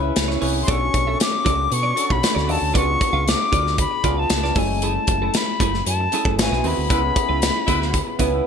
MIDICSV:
0, 0, Header, 1, 8, 480
1, 0, Start_track
1, 0, Tempo, 517688
1, 630, Time_signature, 4, 2, 24, 8
1, 7852, End_track
2, 0, Start_track
2, 0, Title_t, "Flute"
2, 0, Program_c, 0, 73
2, 583, Note_on_c, 0, 84, 83
2, 647, Note_on_c, 0, 85, 111
2, 661, Note_off_c, 0, 84, 0
2, 1119, Note_off_c, 0, 85, 0
2, 1131, Note_on_c, 0, 86, 109
2, 1607, Note_on_c, 0, 85, 118
2, 1621, Note_off_c, 0, 86, 0
2, 1965, Note_on_c, 0, 83, 102
2, 1979, Note_off_c, 0, 85, 0
2, 2327, Note_on_c, 0, 81, 100
2, 2341, Note_off_c, 0, 83, 0
2, 2553, Note_off_c, 0, 81, 0
2, 2559, Note_on_c, 0, 85, 104
2, 3047, Note_on_c, 0, 86, 108
2, 3060, Note_off_c, 0, 85, 0
2, 3519, Note_off_c, 0, 86, 0
2, 3527, Note_on_c, 0, 83, 106
2, 3888, Note_on_c, 0, 81, 91
2, 3901, Note_off_c, 0, 83, 0
2, 4248, Note_on_c, 0, 80, 93
2, 4262, Note_off_c, 0, 81, 0
2, 4484, Note_on_c, 0, 81, 101
2, 4498, Note_off_c, 0, 80, 0
2, 4974, Note_on_c, 0, 83, 94
2, 4988, Note_off_c, 0, 81, 0
2, 5443, Note_off_c, 0, 83, 0
2, 5452, Note_on_c, 0, 81, 106
2, 5889, Note_off_c, 0, 81, 0
2, 5947, Note_on_c, 0, 80, 93
2, 6185, Note_on_c, 0, 83, 102
2, 6199, Note_off_c, 0, 80, 0
2, 7851, Note_off_c, 0, 83, 0
2, 7852, End_track
3, 0, Start_track
3, 0, Title_t, "Clean electric guitar"
3, 0, Program_c, 1, 27
3, 20, Note_on_c, 1, 76, 60
3, 21, Note_on_c, 1, 71, 53
3, 29, Note_on_c, 1, 64, 48
3, 132, Note_off_c, 1, 64, 0
3, 134, Note_off_c, 1, 71, 0
3, 145, Note_off_c, 1, 76, 0
3, 260, Note_on_c, 1, 73, 66
3, 267, Note_on_c, 1, 71, 60
3, 272, Note_on_c, 1, 64, 49
3, 365, Note_off_c, 1, 64, 0
3, 368, Note_off_c, 1, 71, 0
3, 374, Note_off_c, 1, 73, 0
3, 376, Note_on_c, 1, 64, 73
3, 379, Note_on_c, 1, 71, 84
3, 385, Note_on_c, 1, 73, 86
3, 490, Note_off_c, 1, 73, 0
3, 497, Note_off_c, 1, 71, 0
3, 540, Note_off_c, 1, 64, 0
3, 622, Note_on_c, 1, 66, 80
3, 629, Note_on_c, 1, 69, 94
3, 633, Note_on_c, 1, 74, 97
3, 737, Note_off_c, 1, 74, 0
3, 745, Note_off_c, 1, 69, 0
3, 783, Note_off_c, 1, 66, 0
3, 994, Note_on_c, 1, 76, 72
3, 999, Note_on_c, 1, 69, 65
3, 1001, Note_on_c, 1, 66, 56
3, 1098, Note_off_c, 1, 66, 0
3, 1105, Note_off_c, 1, 69, 0
3, 1115, Note_off_c, 1, 76, 0
3, 1342, Note_on_c, 1, 66, 89
3, 1348, Note_on_c, 1, 69, 96
3, 1353, Note_on_c, 1, 74, 103
3, 1444, Note_off_c, 1, 74, 0
3, 1450, Note_off_c, 1, 69, 0
3, 1503, Note_off_c, 1, 66, 0
3, 1697, Note_on_c, 1, 74, 66
3, 1703, Note_on_c, 1, 69, 57
3, 1708, Note_on_c, 1, 66, 54
3, 1803, Note_off_c, 1, 66, 0
3, 1810, Note_off_c, 1, 69, 0
3, 1814, Note_on_c, 1, 66, 81
3, 1815, Note_off_c, 1, 74, 0
3, 1821, Note_on_c, 1, 69, 86
3, 1826, Note_on_c, 1, 74, 82
3, 1927, Note_off_c, 1, 74, 0
3, 1934, Note_off_c, 1, 69, 0
3, 1979, Note_off_c, 1, 66, 0
3, 2175, Note_on_c, 1, 74, 65
3, 2181, Note_on_c, 1, 69, 57
3, 2186, Note_on_c, 1, 66, 53
3, 2285, Note_off_c, 1, 66, 0
3, 2292, Note_off_c, 1, 69, 0
3, 2295, Note_off_c, 1, 74, 0
3, 2296, Note_on_c, 1, 66, 88
3, 2303, Note_on_c, 1, 69, 86
3, 2306, Note_on_c, 1, 74, 90
3, 2413, Note_off_c, 1, 74, 0
3, 2418, Note_off_c, 1, 69, 0
3, 2460, Note_off_c, 1, 66, 0
3, 2535, Note_on_c, 1, 65, 88
3, 2539, Note_on_c, 1, 71, 89
3, 2544, Note_on_c, 1, 74, 108
3, 2649, Note_off_c, 1, 74, 0
3, 2652, Note_off_c, 1, 71, 0
3, 2699, Note_off_c, 1, 65, 0
3, 2903, Note_on_c, 1, 77, 78
3, 2910, Note_on_c, 1, 71, 61
3, 2913, Note_on_c, 1, 65, 58
3, 3016, Note_off_c, 1, 65, 0
3, 3019, Note_off_c, 1, 71, 0
3, 3029, Note_off_c, 1, 77, 0
3, 3262, Note_on_c, 1, 65, 80
3, 3270, Note_on_c, 1, 71, 94
3, 3276, Note_on_c, 1, 74, 104
3, 3379, Note_off_c, 1, 74, 0
3, 3383, Note_off_c, 1, 71, 0
3, 3423, Note_off_c, 1, 65, 0
3, 3744, Note_on_c, 1, 65, 90
3, 3749, Note_on_c, 1, 71, 93
3, 3753, Note_on_c, 1, 74, 87
3, 3862, Note_off_c, 1, 71, 0
3, 3862, Note_off_c, 1, 74, 0
3, 3864, Note_off_c, 1, 65, 0
3, 3865, Note_on_c, 1, 77, 62
3, 3873, Note_on_c, 1, 71, 54
3, 3875, Note_on_c, 1, 65, 49
3, 3979, Note_off_c, 1, 65, 0
3, 3984, Note_off_c, 1, 71, 0
3, 3991, Note_off_c, 1, 77, 0
3, 4112, Note_on_c, 1, 74, 65
3, 4119, Note_on_c, 1, 71, 50
3, 4121, Note_on_c, 1, 65, 51
3, 4223, Note_on_c, 1, 57, 90
3, 4225, Note_off_c, 1, 65, 0
3, 4229, Note_on_c, 1, 64, 86
3, 4232, Note_off_c, 1, 71, 0
3, 4234, Note_off_c, 1, 74, 0
3, 4236, Note_on_c, 1, 68, 98
3, 4340, Note_off_c, 1, 68, 0
3, 4347, Note_off_c, 1, 64, 0
3, 4383, Note_off_c, 1, 57, 0
3, 4473, Note_on_c, 1, 57, 79
3, 4481, Note_on_c, 1, 64, 77
3, 4486, Note_on_c, 1, 68, 100
3, 4584, Note_off_c, 1, 68, 0
3, 4592, Note_off_c, 1, 64, 0
3, 4628, Note_off_c, 1, 57, 0
3, 4839, Note_on_c, 1, 69, 80
3, 4847, Note_on_c, 1, 64, 70
3, 4850, Note_on_c, 1, 57, 63
3, 4953, Note_off_c, 1, 57, 0
3, 4956, Note_off_c, 1, 64, 0
3, 4958, Note_off_c, 1, 69, 0
3, 5201, Note_on_c, 1, 57, 96
3, 5205, Note_on_c, 1, 64, 90
3, 5210, Note_on_c, 1, 68, 104
3, 5317, Note_off_c, 1, 68, 0
3, 5326, Note_off_c, 1, 64, 0
3, 5353, Note_off_c, 1, 57, 0
3, 5688, Note_on_c, 1, 57, 83
3, 5692, Note_on_c, 1, 64, 99
3, 5697, Note_on_c, 1, 68, 95
3, 5798, Note_off_c, 1, 64, 0
3, 5798, Note_off_c, 1, 68, 0
3, 5800, Note_off_c, 1, 57, 0
3, 5801, Note_on_c, 1, 69, 66
3, 5809, Note_on_c, 1, 64, 61
3, 5812, Note_on_c, 1, 57, 53
3, 5919, Note_off_c, 1, 69, 0
3, 5922, Note_off_c, 1, 57, 0
3, 5923, Note_off_c, 1, 64, 0
3, 6047, Note_on_c, 1, 68, 58
3, 6051, Note_on_c, 1, 66, 59
3, 6059, Note_on_c, 1, 60, 47
3, 6146, Note_off_c, 1, 60, 0
3, 6156, Note_off_c, 1, 66, 0
3, 6157, Note_on_c, 1, 60, 92
3, 6159, Note_off_c, 1, 68, 0
3, 6167, Note_on_c, 1, 66, 100
3, 6170, Note_on_c, 1, 68, 101
3, 6270, Note_off_c, 1, 68, 0
3, 6279, Note_off_c, 1, 66, 0
3, 6311, Note_off_c, 1, 60, 0
3, 6403, Note_on_c, 1, 59, 75
3, 6408, Note_on_c, 1, 64, 83
3, 6412, Note_on_c, 1, 68, 73
3, 6511, Note_off_c, 1, 68, 0
3, 6517, Note_off_c, 1, 64, 0
3, 6554, Note_off_c, 1, 59, 0
3, 6756, Note_on_c, 1, 71, 71
3, 6763, Note_on_c, 1, 64, 63
3, 6764, Note_on_c, 1, 59, 56
3, 6870, Note_off_c, 1, 59, 0
3, 6876, Note_off_c, 1, 64, 0
3, 6877, Note_off_c, 1, 71, 0
3, 7123, Note_on_c, 1, 59, 93
3, 7130, Note_on_c, 1, 64, 90
3, 7135, Note_on_c, 1, 68, 98
3, 7230, Note_off_c, 1, 68, 0
3, 7237, Note_off_c, 1, 64, 0
3, 7275, Note_off_c, 1, 59, 0
3, 7592, Note_on_c, 1, 59, 78
3, 7601, Note_on_c, 1, 64, 82
3, 7603, Note_on_c, 1, 68, 97
3, 7709, Note_off_c, 1, 68, 0
3, 7710, Note_off_c, 1, 64, 0
3, 7713, Note_on_c, 1, 71, 60
3, 7715, Note_off_c, 1, 59, 0
3, 7721, Note_on_c, 1, 64, 55
3, 7726, Note_on_c, 1, 59, 46
3, 7834, Note_off_c, 1, 59, 0
3, 7836, Note_off_c, 1, 71, 0
3, 7838, Note_off_c, 1, 64, 0
3, 7852, End_track
4, 0, Start_track
4, 0, Title_t, "Horn section"
4, 0, Program_c, 2, 61
4, 6389, Note_on_c, 2, 64, 86
4, 6390, Note_on_c, 2, 71, 100
4, 6391, Note_on_c, 2, 56, 91
4, 6493, Note_off_c, 2, 64, 0
4, 6493, Note_off_c, 2, 71, 0
4, 6494, Note_off_c, 2, 56, 0
4, 7109, Note_on_c, 2, 71, 113
4, 7112, Note_on_c, 2, 64, 100
4, 7114, Note_on_c, 2, 56, 84
4, 7417, Note_off_c, 2, 71, 0
4, 7419, Note_off_c, 2, 64, 0
4, 7420, Note_off_c, 2, 56, 0
4, 7852, End_track
5, 0, Start_track
5, 0, Title_t, "Tine electric piano"
5, 0, Program_c, 3, 4
5, 0, Control_c, 3, 64, 127
5, 0, Note_on_c, 3, 61, 90
5, 0, Note_on_c, 3, 64, 77
5, 0, Note_on_c, 3, 68, 71
5, 0, Note_on_c, 3, 71, 96
5, 238, Note_off_c, 3, 61, 0
5, 240, Note_off_c, 3, 64, 0
5, 244, Note_off_c, 3, 68, 0
5, 245, Note_off_c, 3, 71, 0
5, 382, Note_on_c, 3, 61, 78
5, 387, Note_on_c, 3, 64, 76
5, 394, Note_on_c, 3, 68, 70
5, 396, Note_on_c, 3, 71, 88
5, 552, Note_off_c, 3, 61, 0
5, 555, Note_off_c, 3, 64, 0
5, 559, Note_off_c, 3, 68, 0
5, 560, Note_off_c, 3, 71, 0
5, 623, Note_on_c, 3, 61, 76
5, 629, Note_on_c, 3, 62, 67
5, 632, Note_on_c, 3, 66, 67
5, 635, Note_on_c, 3, 69, 89
5, 644, Control_c, 3, 64, 0
5, 803, Control_c, 3, 64, 127
5, 1292, Note_off_c, 3, 61, 0
5, 1295, Note_off_c, 3, 62, 0
5, 1296, Note_off_c, 3, 66, 0
5, 1298, Note_off_c, 3, 69, 0
5, 1829, Note_on_c, 3, 62, 68
5, 1830, Note_on_c, 3, 61, 64
5, 1834, Note_on_c, 3, 66, 69
5, 1840, Note_on_c, 3, 69, 71
5, 2162, Note_off_c, 3, 62, 0
5, 2163, Note_off_c, 3, 61, 0
5, 2165, Note_off_c, 3, 66, 0
5, 2168, Note_off_c, 3, 69, 0
5, 2309, Note_on_c, 3, 61, 66
5, 2313, Note_on_c, 3, 62, 63
5, 2315, Note_on_c, 3, 66, 67
5, 2321, Note_on_c, 3, 69, 72
5, 2476, Note_off_c, 3, 61, 0
5, 2478, Note_off_c, 3, 62, 0
5, 2479, Note_off_c, 3, 66, 0
5, 2482, Note_off_c, 3, 69, 0
5, 2554, Note_on_c, 3, 59, 85
5, 2556, Note_on_c, 3, 62, 68
5, 2556, Note_on_c, 3, 65, 68
5, 2563, Note_on_c, 3, 66, 69
5, 2564, Control_c, 3, 64, 0
5, 2614, Note_off_c, 3, 66, 0
5, 2623, Note_on_c, 3, 68, 83
5, 2730, Control_c, 3, 64, 127
5, 3217, Note_off_c, 3, 59, 0
5, 3218, Note_off_c, 3, 62, 0
5, 3218, Note_off_c, 3, 65, 0
5, 3252, Note_off_c, 3, 68, 0
5, 3745, Note_on_c, 3, 59, 71
5, 3751, Note_on_c, 3, 62, 60
5, 3755, Note_on_c, 3, 65, 64
5, 3760, Note_on_c, 3, 68, 72
5, 4080, Note_off_c, 3, 59, 0
5, 4083, Note_off_c, 3, 62, 0
5, 4086, Note_off_c, 3, 65, 0
5, 4088, Note_off_c, 3, 68, 0
5, 4220, Note_on_c, 3, 57, 80
5, 4228, Note_on_c, 3, 61, 75
5, 4229, Note_on_c, 3, 64, 65
5, 4230, Note_on_c, 3, 56, 89
5, 4245, Control_c, 3, 64, 0
5, 4384, Control_c, 3, 64, 127
5, 4994, Note_off_c, 3, 57, 0
5, 4998, Note_off_c, 3, 61, 0
5, 4998, Note_off_c, 3, 64, 0
5, 4999, Note_off_c, 3, 56, 0
5, 5671, Note_on_c, 3, 57, 72
5, 5675, Note_on_c, 3, 61, 72
5, 5678, Note_on_c, 3, 64, 65
5, 5684, Note_on_c, 3, 68, 75
5, 5911, Note_off_c, 3, 57, 0
5, 5913, Note_off_c, 3, 64, 0
5, 5914, Note_off_c, 3, 61, 0
5, 5918, Note_off_c, 3, 68, 0
5, 5921, Note_on_c, 3, 59, 83
5, 5921, Note_on_c, 3, 60, 70
5, 5924, Note_on_c, 3, 64, 72
5, 5925, Control_c, 3, 64, 0
5, 5932, Note_on_c, 3, 66, 81
5, 6072, Control_c, 3, 64, 127
5, 6108, Note_off_c, 3, 59, 0
5, 6108, Note_off_c, 3, 60, 0
5, 6110, Note_off_c, 3, 64, 0
5, 6114, Note_off_c, 3, 66, 0
5, 6164, Note_on_c, 3, 59, 66
5, 6167, Note_on_c, 3, 64, 65
5, 6168, Note_on_c, 3, 60, 67
5, 6173, Note_on_c, 3, 68, 77
5, 6324, Note_off_c, 3, 59, 0
5, 6326, Note_off_c, 3, 60, 0
5, 6326, Note_off_c, 3, 64, 0
5, 6329, Note_off_c, 3, 68, 0
5, 6400, Note_on_c, 3, 59, 75
5, 6402, Control_c, 3, 64, 0
5, 6403, Note_on_c, 3, 61, 78
5, 6404, Note_on_c, 3, 64, 77
5, 6408, Note_on_c, 3, 68, 87
5, 6576, Control_c, 3, 64, 127
5, 7062, Note_off_c, 3, 59, 0
5, 7063, Note_off_c, 3, 61, 0
5, 7064, Note_off_c, 3, 64, 0
5, 7066, Note_off_c, 3, 68, 0
5, 7591, Note_on_c, 3, 59, 86
5, 7597, Note_on_c, 3, 61, 80
5, 7600, Note_on_c, 3, 64, 81
5, 7602, Note_on_c, 3, 71, 85
5, 7852, Note_off_c, 3, 59, 0
5, 7852, Note_off_c, 3, 61, 0
5, 7852, Note_off_c, 3, 64, 0
5, 7852, Note_off_c, 3, 71, 0
5, 7852, End_track
6, 0, Start_track
6, 0, Title_t, "Fingered electric bass"
6, 0, Program_c, 4, 33
6, 0, Note_on_c, 4, 37, 93
6, 99, Note_off_c, 4, 37, 0
6, 154, Note_on_c, 4, 37, 86
6, 343, Note_off_c, 4, 37, 0
6, 388, Note_on_c, 4, 36, 92
6, 579, Note_off_c, 4, 36, 0
6, 633, Note_on_c, 4, 35, 107
6, 822, Note_off_c, 4, 35, 0
6, 872, Note_on_c, 4, 35, 84
6, 1061, Note_off_c, 4, 35, 0
6, 1355, Note_on_c, 4, 37, 100
6, 1543, Note_off_c, 4, 37, 0
6, 1590, Note_on_c, 4, 47, 102
6, 1780, Note_off_c, 4, 47, 0
6, 1953, Note_on_c, 4, 35, 91
6, 2047, Note_off_c, 4, 35, 0
6, 2189, Note_on_c, 4, 38, 88
6, 2310, Note_off_c, 4, 38, 0
6, 2310, Note_on_c, 4, 39, 95
6, 2405, Note_off_c, 4, 39, 0
6, 2426, Note_on_c, 4, 38, 76
6, 2523, Note_off_c, 4, 38, 0
6, 2552, Note_on_c, 4, 37, 98
6, 2741, Note_off_c, 4, 37, 0
6, 2900, Note_on_c, 4, 37, 99
6, 3094, Note_off_c, 4, 37, 0
6, 3269, Note_on_c, 4, 38, 94
6, 3554, Note_off_c, 4, 38, 0
6, 3749, Note_on_c, 4, 37, 89
6, 3939, Note_off_c, 4, 37, 0
6, 3989, Note_on_c, 4, 37, 86
6, 4179, Note_off_c, 4, 37, 0
6, 4225, Note_on_c, 4, 30, 94
6, 4607, Note_off_c, 4, 30, 0
6, 4710, Note_on_c, 4, 30, 94
6, 4900, Note_off_c, 4, 30, 0
6, 5197, Note_on_c, 4, 30, 95
6, 5385, Note_off_c, 4, 30, 0
6, 5437, Note_on_c, 4, 42, 101
6, 5624, Note_off_c, 4, 42, 0
6, 5800, Note_on_c, 4, 30, 90
6, 5916, Note_off_c, 4, 30, 0
6, 5916, Note_on_c, 4, 32, 91
6, 6009, Note_off_c, 4, 32, 0
6, 6038, Note_on_c, 4, 35, 99
6, 6130, Note_off_c, 4, 35, 0
6, 6159, Note_on_c, 4, 39, 102
6, 6251, Note_off_c, 4, 39, 0
6, 6286, Note_on_c, 4, 38, 76
6, 6375, Note_off_c, 4, 38, 0
6, 6400, Note_on_c, 4, 37, 104
6, 6587, Note_off_c, 4, 37, 0
6, 6761, Note_on_c, 4, 37, 106
6, 6948, Note_off_c, 4, 37, 0
6, 7122, Note_on_c, 4, 38, 93
6, 7403, Note_off_c, 4, 38, 0
6, 7601, Note_on_c, 4, 37, 90
6, 7788, Note_off_c, 4, 37, 0
6, 7852, End_track
7, 0, Start_track
7, 0, Title_t, "Muted clean electric guitar strokes"
7, 501, Note_on_c, 9, 29, 40
7, 594, Note_off_c, 9, 29, 0
7, 748, Note_on_c, 9, 29, 39
7, 841, Note_off_c, 9, 29, 0
7, 865, Note_on_c, 9, 29, 43
7, 958, Note_off_c, 9, 29, 0
7, 1109, Note_on_c, 9, 29, 39
7, 1202, Note_off_c, 9, 29, 0
7, 1226, Note_on_c, 9, 29, 39
7, 1318, Note_off_c, 9, 29, 0
7, 1455, Note_on_c, 9, 29, 53
7, 1548, Note_off_c, 9, 29, 0
7, 1574, Note_on_c, 9, 29, 50
7, 1667, Note_off_c, 9, 29, 0
7, 1938, Note_on_c, 9, 29, 46
7, 2031, Note_off_c, 9, 29, 0
7, 2062, Note_on_c, 9, 29, 36
7, 2154, Note_off_c, 9, 29, 0
7, 2424, Note_on_c, 9, 29, 45
7, 2517, Note_off_c, 9, 29, 0
7, 2661, Note_on_c, 9, 29, 38
7, 2753, Note_off_c, 9, 29, 0
7, 2782, Note_on_c, 9, 29, 48
7, 2874, Note_off_c, 9, 29, 0
7, 3027, Note_on_c, 9, 29, 40
7, 3120, Note_off_c, 9, 29, 0
7, 3148, Note_on_c, 9, 29, 45
7, 3240, Note_off_c, 9, 29, 0
7, 3390, Note_on_c, 9, 29, 44
7, 3482, Note_off_c, 9, 29, 0
7, 3507, Note_on_c, 9, 29, 45
7, 3600, Note_off_c, 9, 29, 0
7, 3626, Note_on_c, 9, 29, 39
7, 3718, Note_off_c, 9, 29, 0
7, 4351, Note_on_c, 9, 29, 45
7, 4444, Note_off_c, 9, 29, 0
7, 4595, Note_on_c, 9, 29, 48
7, 4687, Note_off_c, 9, 29, 0
7, 4718, Note_on_c, 9, 29, 45
7, 4810, Note_off_c, 9, 29, 0
7, 4964, Note_on_c, 9, 29, 34
7, 5057, Note_off_c, 9, 29, 0
7, 5089, Note_on_c, 9, 29, 55
7, 5181, Note_off_c, 9, 29, 0
7, 5328, Note_on_c, 9, 29, 47
7, 5421, Note_off_c, 9, 29, 0
7, 5449, Note_on_c, 9, 29, 33
7, 5541, Note_off_c, 9, 29, 0
7, 5566, Note_on_c, 9, 29, 45
7, 5659, Note_off_c, 9, 29, 0
7, 6281, Note_on_c, 9, 29, 38
7, 6374, Note_off_c, 9, 29, 0
7, 6522, Note_on_c, 9, 29, 43
7, 6615, Note_off_c, 9, 29, 0
7, 6643, Note_on_c, 9, 29, 48
7, 6736, Note_off_c, 9, 29, 0
7, 7007, Note_on_c, 9, 29, 48
7, 7100, Note_off_c, 9, 29, 0
7, 7241, Note_on_c, 9, 29, 46
7, 7334, Note_off_c, 9, 29, 0
7, 7363, Note_on_c, 9, 29, 36
7, 7456, Note_off_c, 9, 29, 0
7, 7480, Note_on_c, 9, 29, 50
7, 7572, Note_off_c, 9, 29, 0
7, 7852, End_track
8, 0, Start_track
8, 0, Title_t, "Drums"
8, 148, Note_on_c, 9, 42, 88
8, 153, Note_on_c, 9, 38, 106
8, 240, Note_off_c, 9, 42, 0
8, 245, Note_off_c, 9, 38, 0
8, 282, Note_on_c, 9, 38, 32
8, 375, Note_off_c, 9, 38, 0
8, 385, Note_on_c, 9, 46, 74
8, 477, Note_off_c, 9, 46, 0
8, 632, Note_on_c, 9, 36, 115
8, 633, Note_on_c, 9, 42, 100
8, 725, Note_off_c, 9, 36, 0
8, 726, Note_off_c, 9, 42, 0
8, 872, Note_on_c, 9, 36, 94
8, 872, Note_on_c, 9, 42, 75
8, 964, Note_off_c, 9, 42, 0
8, 965, Note_off_c, 9, 36, 0
8, 1113, Note_on_c, 9, 42, 93
8, 1123, Note_on_c, 9, 38, 119
8, 1206, Note_off_c, 9, 42, 0
8, 1216, Note_off_c, 9, 38, 0
8, 1353, Note_on_c, 9, 36, 100
8, 1355, Note_on_c, 9, 42, 87
8, 1445, Note_off_c, 9, 36, 0
8, 1448, Note_off_c, 9, 42, 0
8, 1591, Note_on_c, 9, 42, 83
8, 1684, Note_off_c, 9, 42, 0
8, 1827, Note_on_c, 9, 42, 69
8, 1920, Note_off_c, 9, 42, 0
8, 1950, Note_on_c, 9, 36, 90
8, 2043, Note_off_c, 9, 36, 0
8, 2071, Note_on_c, 9, 42, 90
8, 2076, Note_on_c, 9, 38, 102
8, 2163, Note_off_c, 9, 42, 0
8, 2169, Note_off_c, 9, 38, 0
8, 2201, Note_on_c, 9, 38, 32
8, 2293, Note_off_c, 9, 38, 0
8, 2308, Note_on_c, 9, 46, 64
8, 2400, Note_off_c, 9, 46, 0
8, 2551, Note_on_c, 9, 36, 100
8, 2553, Note_on_c, 9, 42, 90
8, 2643, Note_off_c, 9, 36, 0
8, 2645, Note_off_c, 9, 42, 0
8, 2790, Note_on_c, 9, 36, 103
8, 2793, Note_on_c, 9, 42, 75
8, 2883, Note_off_c, 9, 36, 0
8, 2886, Note_off_c, 9, 42, 0
8, 3037, Note_on_c, 9, 42, 89
8, 3047, Note_on_c, 9, 38, 125
8, 3130, Note_off_c, 9, 42, 0
8, 3140, Note_off_c, 9, 38, 0
8, 3269, Note_on_c, 9, 36, 95
8, 3274, Note_on_c, 9, 42, 74
8, 3362, Note_off_c, 9, 36, 0
8, 3366, Note_off_c, 9, 42, 0
8, 3400, Note_on_c, 9, 38, 33
8, 3493, Note_off_c, 9, 38, 0
8, 3507, Note_on_c, 9, 42, 84
8, 3508, Note_on_c, 9, 36, 93
8, 3599, Note_off_c, 9, 42, 0
8, 3601, Note_off_c, 9, 36, 0
8, 3743, Note_on_c, 9, 42, 74
8, 3746, Note_on_c, 9, 36, 90
8, 3836, Note_off_c, 9, 42, 0
8, 3838, Note_off_c, 9, 36, 0
8, 3983, Note_on_c, 9, 42, 84
8, 3988, Note_on_c, 9, 38, 113
8, 4076, Note_off_c, 9, 42, 0
8, 4081, Note_off_c, 9, 38, 0
8, 4119, Note_on_c, 9, 38, 35
8, 4212, Note_off_c, 9, 38, 0
8, 4222, Note_on_c, 9, 46, 65
8, 4227, Note_on_c, 9, 36, 97
8, 4314, Note_off_c, 9, 46, 0
8, 4319, Note_off_c, 9, 36, 0
8, 4468, Note_on_c, 9, 42, 94
8, 4561, Note_off_c, 9, 42, 0
8, 4703, Note_on_c, 9, 42, 77
8, 4709, Note_on_c, 9, 36, 100
8, 4796, Note_off_c, 9, 42, 0
8, 4801, Note_off_c, 9, 36, 0
8, 4948, Note_on_c, 9, 42, 91
8, 4958, Note_on_c, 9, 38, 117
8, 5041, Note_off_c, 9, 42, 0
8, 5051, Note_off_c, 9, 38, 0
8, 5193, Note_on_c, 9, 36, 91
8, 5197, Note_on_c, 9, 42, 89
8, 5286, Note_off_c, 9, 36, 0
8, 5289, Note_off_c, 9, 42, 0
8, 5320, Note_on_c, 9, 38, 34
8, 5412, Note_off_c, 9, 38, 0
8, 5437, Note_on_c, 9, 42, 88
8, 5530, Note_off_c, 9, 42, 0
8, 5675, Note_on_c, 9, 42, 71
8, 5768, Note_off_c, 9, 42, 0
8, 5797, Note_on_c, 9, 36, 92
8, 5890, Note_off_c, 9, 36, 0
8, 5922, Note_on_c, 9, 42, 96
8, 5927, Note_on_c, 9, 38, 112
8, 6015, Note_off_c, 9, 42, 0
8, 6020, Note_off_c, 9, 38, 0
8, 6052, Note_on_c, 9, 38, 32
8, 6144, Note_off_c, 9, 38, 0
8, 6157, Note_on_c, 9, 46, 62
8, 6250, Note_off_c, 9, 46, 0
8, 6400, Note_on_c, 9, 36, 119
8, 6404, Note_on_c, 9, 42, 99
8, 6492, Note_off_c, 9, 36, 0
8, 6496, Note_off_c, 9, 42, 0
8, 6639, Note_on_c, 9, 36, 103
8, 6641, Note_on_c, 9, 42, 77
8, 6732, Note_off_c, 9, 36, 0
8, 6734, Note_off_c, 9, 42, 0
8, 6880, Note_on_c, 9, 42, 94
8, 6890, Note_on_c, 9, 38, 125
8, 6973, Note_off_c, 9, 42, 0
8, 6982, Note_off_c, 9, 38, 0
8, 7120, Note_on_c, 9, 36, 94
8, 7122, Note_on_c, 9, 42, 83
8, 7213, Note_off_c, 9, 36, 0
8, 7215, Note_off_c, 9, 42, 0
8, 7249, Note_on_c, 9, 38, 32
8, 7342, Note_off_c, 9, 38, 0
8, 7359, Note_on_c, 9, 42, 75
8, 7361, Note_on_c, 9, 36, 94
8, 7452, Note_off_c, 9, 42, 0
8, 7454, Note_off_c, 9, 36, 0
8, 7595, Note_on_c, 9, 42, 68
8, 7599, Note_on_c, 9, 36, 83
8, 7688, Note_off_c, 9, 42, 0
8, 7691, Note_off_c, 9, 36, 0
8, 7852, End_track
0, 0, End_of_file